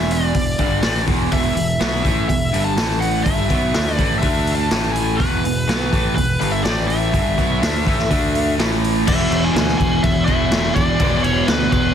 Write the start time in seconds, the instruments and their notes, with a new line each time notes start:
Already playing: picked electric bass E1, overdriven electric guitar E2 B2 E3, lead electric guitar E5
0.11 lead electric guitar D5, open hi-hat
0.34 picked electric bass E1, overdriven electric guitar E2 B2, kick, open hi-hat
0.58 picked electric bass G1, overdriven electric guitar G2 D3 G3, kick, open hi-hat
0.83 picked electric bass A1, overdriven electric guitar A2 E3 A3, snare, open hi-hat
1.07 picked electric bass E1, overdriven electric guitar E2 B2 E3, kick, open hi-hat
1.32 picked electric bass E1, overdriven electric guitar E2 B2 E3, lead electric guitar E5, kick, open hi-hat
1.56 picked electric bass E1, overdriven electric guitar E2 B2, open hi-hat
1.80 picked electric bass B1, overdriven electric guitar B2 F#3 B3, snare, open hi-hat
2.03 picked electric bass A1, overdriven electric guitar A2 E3 A3, kick, open hi-hat
2.28 picked electric bass E1, overdriven electric guitar E2 B2, lead electric guitar E5, kick, open hi-hat
2.52 picked electric bass G1, overdriven electric guitar G2 D3 G3, open hi-hat
2.64 lead electric guitar A5
2.76 picked electric bass A1, overdriven electric guitar A2 E3 A3, snare, open hi-hat
3.00 lead electric guitar F#5, open hi-hat
3.23 picked electric bass G1, overdriven electric guitar G2 D3 G3, lead electric guitar E5, kick, open hi-hat
3.49 picked electric bass B1, overdriven electric guitar B2 F#3 B3, kick, open hi-hat
3.74 picked electric bass D2, overdriven electric guitar D3 A3 D4, snare, open hi-hat
3.94 overdriven electric guitar A2 E3 A3, lead electric guitar D5
3.98 picked electric bass A1, kick, open hi-hat
4.19 picked electric bass D2, overdriven electric guitar D3 A3 D4, lead electric guitar E5, kick, open hi-hat
4.47 open hi-hat
4.55 lead electric guitar A5
4.71 picked electric bass A1, overdriven electric guitar A2 E3 A3, snare, open hi-hat
4.92 lead electric guitar G#5, open hi-hat
5.17 picked electric bass E1, overdriven electric guitar E2 B2, lead electric guitar B4, kick, open hi-hat
5.21 overdriven electric guitar E3
5.43 picked electric bass E1, overdriven electric guitar E2 B2, open hi-hat
5.68 picked electric bass B1, overdriven electric guitar B2 F#3 B3, snare, open hi-hat
5.91 picked electric bass A1, overdriven electric guitar A2 E3 A3, kick, open hi-hat
6.15 picked electric bass E1, overdriven electric guitar E2 B2, lead electric guitar B4, kick, open hi-hat
6.39 picked electric bass G1, overdriven electric guitar G2 D3 G3, open hi-hat
6.52 lead electric guitar E5
6.64 picked electric bass A1, overdriven electric guitar A2 E3 A3, lead electric guitar D5, snare, open hi-hat
6.88 lead electric guitar E5, open hi-hat
7.12 picked electric bass G1, overdriven electric guitar G2 D3 G3, kick, open hi-hat
7.37 picked electric bass B1, overdriven electric guitar B2 F#3 B3, kick, open hi-hat
7.61 picked electric bass D2, overdriven electric guitar D3 A3 D4, snare, open hi-hat
7.86 picked electric bass A1, overdriven electric guitar A2 E3 A3, kick, open hi-hat
7.99 snare
8.10 picked electric bass D2, overdriven electric guitar D3 A3 D4, kick, open hi-hat
8.35 open hi-hat
8.58 picked electric bass A1, overdriven electric guitar A2 E3 A3, snare, open hi-hat
8.84 open hi-hat
9.06 picked electric bass E1, overdriven electric guitar E2 B2 E3, lead electric guitar E5, kick, crash
9.30 picked electric bass E1, crash
9.45 lead electric guitar G#5
9.55 picked electric bass D2, snare, crash
9.68 snare
9.78 picked electric bass E1, lead electric guitar G#5, kick, crash
10.03 picked electric bass E1, lead electric guitar E5, kick, crash
10.25 picked electric bass E1, overdriven electric guitar B2 E3, lead electric guitar E5, kick, crash
10.29 overdriven electric guitar E2
10.50 picked electric bass E1, overdriven electric guitar E2 B2 E3, snare, crash
10.75 picked electric bass E1, lead electric guitar D5, kick, crash
10.98 picked electric bass E1, overdriven electric guitar E2 B2, kick, crash
11.02 overdriven electric guitar E3
11.24 picked electric bass E1, lead electric guitar C#5, crash
11.47 picked electric bass D2, lead electric guitar B4, snare, crash
11.72 picked electric bass E1, lead electric guitar B4, kick, crash